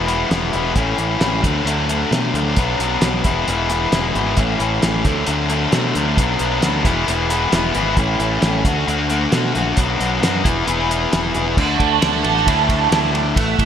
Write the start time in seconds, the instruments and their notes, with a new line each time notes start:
Already playing: fingered electric bass E1
0.06 distorted electric guitar E3 G#3 B3 E4, closed hi-hat
0.29 fingered electric bass E1, distorted electric guitar E3 G#3 B3 E4, snare, closed hi-hat
0.52 fingered electric bass E1, distorted electric guitar G#3 B3 E4, closed hi-hat
0.75 fingered electric bass A1, distorted electric guitar A2 E3 A3 C#4 E4, kick, closed hi-hat
0.98 fingered electric bass A1, distorted electric guitar A3 C#4 E4, closed hi-hat
1.20 fingered electric bass A1, distorted electric guitar A2 E3 A3 C#4 E4, snare, closed hi-hat
1.43 fingered electric bass D2, distorted electric guitar D3 F#3 A3 D4, kick, closed hi-hat
1.65 fingered electric bass D2, distorted electric guitar D3 F#3 A3 D4, closed hi-hat
1.89 distorted electric guitar D3 F#3 A3 D4, closed hi-hat
2.11 fingered electric bass B2, distorted electric guitar D3 F#3 A3 D4, snare, closed hi-hat
2.34 fingered electric bass D2, distorted electric guitar F#3 A3 D4, closed hi-hat
2.56 fingered electric bass B1, distorted electric guitar B2 F#3 B3 D4, kick, closed hi-hat
2.79 fingered electric bass B1, distorted electric guitar F#3 B3 D4, closed hi-hat
3.01 fingered electric bass B1, distorted electric guitar B2 F#3 B3 D4, snare, closed hi-hat
3.24 fingered electric bass E1, distorted electric guitar E3 G#3 B3 E4, kick, closed hi-hat
3.47 fingered electric bass E1, distorted electric guitar E3 G#3 B3 E4, closed hi-hat
3.69 distorted electric guitar E3 G#3 B3 E4, closed hi-hat
3.92 fingered electric bass E1, distorted electric guitar E3 G#3 B3 E4, snare, closed hi-hat
4.14 fingered electric bass G#1, distorted electric guitar G#3 B3 E4, closed hi-hat
4.37 fingered electric bass A1, distorted electric guitar A2 E3 A3 C#4 E4, kick, closed hi-hat
4.59 fingered electric bass A1, distorted electric guitar A3 C#4 E4, closed hi-hat
4.81 fingered electric bass A1, distorted electric guitar A2 E3 A3 C#4 E4, snare, closed hi-hat
5.05 fingered electric bass D2, distorted electric guitar D3 F#3 A3 D4, kick, closed hi-hat
5.27 fingered electric bass D2, distorted electric guitar D3 F#3 A3 D4, closed hi-hat
5.49 distorted electric guitar D3 F#3 A3 D4, closed hi-hat
5.72 fingered electric bass B2, distorted electric guitar D3 F#3 A3 D4, snare, closed hi-hat
5.94 fingered electric bass D2, distorted electric guitar F#3 A3 D4, closed hi-hat
6.16 fingered electric bass B1, distorted electric guitar B2 F#3 B3 D4, kick, closed hi-hat
6.39 fingered electric bass B1, distorted electric guitar F#3 B3 D4, closed hi-hat
6.62 fingered electric bass D2, distorted electric guitar B2 F#3 B3 D4, snare, closed hi-hat
6.84 fingered electric bass E1, distorted electric guitar E3 G#3 B3 E4, kick, closed hi-hat
7.07 fingered electric bass E1, distorted electric guitar E3 G#3 B3 E4, closed hi-hat
7.29 distorted electric guitar E3 G#3 B3 E4, closed hi-hat
7.52 fingered electric bass E1, distorted electric guitar E3 G#3 B3 E4, snare, closed hi-hat
7.75 fingered electric bass G#1, distorted electric guitar G#3 B3 E4, closed hi-hat
7.97 fingered electric bass A1, distorted electric guitar A2 E3 A3 C#4 E4, kick, closed hi-hat
8.19 fingered electric bass A1, distorted electric guitar A3 C#4 E4, closed hi-hat
8.41 fingered electric bass A1, distorted electric guitar A2 E3 A3 C#4 E4, snare, closed hi-hat
8.64 fingered electric bass D2, distorted electric guitar D3 A3 D4 F#4, overdriven electric guitar F#3, kick, closed hi-hat
8.86 fingered electric bass D2, distorted electric guitar D3 A3 D4, overdriven electric guitar F#3, closed hi-hat
8.90 distorted electric guitar F#4
9.07 overdriven electric guitar F#3, distorted electric guitar A3 D4 F#4, closed hi-hat
9.12 distorted electric guitar D3
9.30 fingered electric bass B2, distorted electric guitar D3 A3, overdriven electric guitar F#3, snare, closed hi-hat
9.34 distorted electric guitar D4 F#4
9.53 fingered electric bass A#1, overdriven electric guitar A3, distorted electric guitar D4 F#4, closed hi-hat
9.57 distorted electric guitar A3
9.77 fingered electric bass B1, distorted electric guitar B2 F#3 B3 D4 F#4, kick, closed hi-hat
9.99 fingered electric bass B1, distorted electric guitar B3 D4 F#4, closed hi-hat
10.21 fingered electric bass F#2, distorted electric guitar B2 F#3 B3 D4 F#4, snare, closed hi-hat
10.44 fingered electric bass E1, distorted electric guitar E3 B3 E4 G#4, kick, closed hi-hat
10.66 fingered electric bass E1, distorted electric guitar E3 B3 E4 G#4, closed hi-hat
10.89 distorted electric guitar E3 B3 E4 G#4, closed hi-hat
11.11 fingered electric bass E1, distorted electric guitar E3 B3 E4 G#4, snare, closed hi-hat
11.34 fingered electric bass E1, distorted electric guitar B3 E4 G#4, closed hi-hat
11.57 fingered electric bass D2, distorted electric guitar D3, overdriven electric guitar A3 D4 F#4, kick, crash
11.80 fingered electric bass D2, kick, ride
12.01 fingered electric bass D2, distorted electric guitar D4, snare, ride
12.23 fingered electric bass A1, distorted electric guitar A4, ride
12.37 snare
12.46 fingered electric bass D2, distorted electric guitar E4, kick, ride
12.68 distorted electric guitar D4, kick, ride
12.90 fingered electric bass D2, distorted electric guitar E4, snare, ride
13.13 distorted electric guitar D4, ride
13.34 fingered electric bass A1, overdriven electric guitar E3 B3 E4, distorted electric guitar A3, kick, ride
13.59 fingered electric bass A1, kick, ride